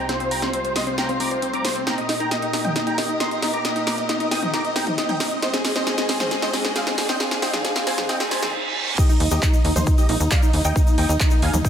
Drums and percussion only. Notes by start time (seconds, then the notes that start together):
0.09 snare, closed hi-hat
0.20 closed hi-hat
0.31 open hi-hat
0.42 snare, closed hi-hat
0.53 closed hi-hat
0.65 closed hi-hat
0.76 snare, open hi-hat
0.87 closed hi-hat
0.98 snare, closed hi-hat
1.09 closed hi-hat
1.20 open hi-hat
1.31 closed hi-hat
1.42 closed hi-hat
1.53 closed hi-hat
1.65 snare, open hi-hat
1.76 closed hi-hat
1.87 snare, closed hi-hat
1.98 closed hi-hat
2.09 snare, open hi-hat
2.20 closed hi-hat
2.31 snare, closed hi-hat
2.42 closed hi-hat
2.53 snare, open hi-hat
2.65 closed hi-hat, mid tom
2.76 snare, closed hi-hat
2.87 closed hi-hat
2.98 snare, open hi-hat
3.09 closed hi-hat
3.20 snare, closed hi-hat
3.31 closed hi-hat
3.42 snare, open hi-hat
3.54 closed hi-hat
3.65 snare, closed hi-hat
3.76 closed hi-hat
3.87 snare, open hi-hat
3.98 closed hi-hat
4.09 snare, closed hi-hat
4.20 closed hi-hat
4.31 snare, open hi-hat
4.42 mid tom
4.54 snare, closed hi-hat
4.65 closed hi-hat
4.76 snare, open hi-hat
4.87 closed hi-hat, mid tom
4.98 snare, closed hi-hat
5.09 closed hi-hat, mid tom
5.20 snare, open hi-hat
5.31 closed hi-hat
5.42 snare, closed hi-hat
5.54 snare, closed hi-hat
5.65 snare, open hi-hat
5.76 snare, closed hi-hat
5.87 snare, closed hi-hat
5.98 snare, closed hi-hat
6.09 snare, open hi-hat
6.20 snare, closed hi-hat, mid tom
6.31 snare, closed hi-hat
6.42 snare, closed hi-hat
6.53 snare, open hi-hat
6.65 snare
6.76 snare, closed hi-hat
6.87 snare, closed hi-hat
6.98 snare, open hi-hat
7.09 snare
7.20 snare, closed hi-hat
7.31 snare, closed hi-hat
7.42 snare, open hi-hat
7.53 snare, closed hi-hat, mid tom
7.65 snare, closed hi-hat
7.76 snare, closed hi-hat
7.87 snare, open hi-hat
7.98 snare, mid tom
8.09 snare, closed hi-hat
8.20 snare, closed hi-hat
8.31 snare, open hi-hat
8.42 snare, mid tom
8.98 kick, closed hi-hat, crash, shaker
9.09 closed hi-hat, shaker
9.20 open hi-hat
9.31 closed hi-hat, shaker
9.42 kick, clap, closed hi-hat, shaker
9.53 closed hi-hat, shaker
9.65 open hi-hat
9.76 closed hi-hat, mid tom, shaker
9.86 kick, closed hi-hat, shaker
9.98 closed hi-hat, shaker
10.09 open hi-hat
10.20 closed hi-hat, shaker
10.31 kick, clap, closed hi-hat, shaker
10.42 closed hi-hat, shaker
10.53 open hi-hat
10.65 closed hi-hat, shaker
10.76 kick, closed hi-hat, shaker
10.87 closed hi-hat, shaker
10.98 open hi-hat
11.09 closed hi-hat, shaker
11.20 kick, clap, closed hi-hat, shaker
11.30 closed hi-hat, shaker
11.42 open hi-hat
11.53 closed hi-hat, mid tom, shaker
11.65 kick, closed hi-hat, shaker